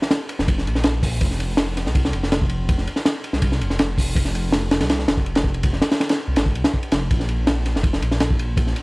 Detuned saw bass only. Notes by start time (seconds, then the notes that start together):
0.39 F1
0.66 A#1
1.21 F1
1.86 C2
2.13 F1
3.33 C2
3.61 F1
4.16 F1
4.81 C2
5.08 F1
6.28 C2
6.37 G#1
6.55 C2
6.92 F1
7.11 A#1
7.75 F1
8.02 A#1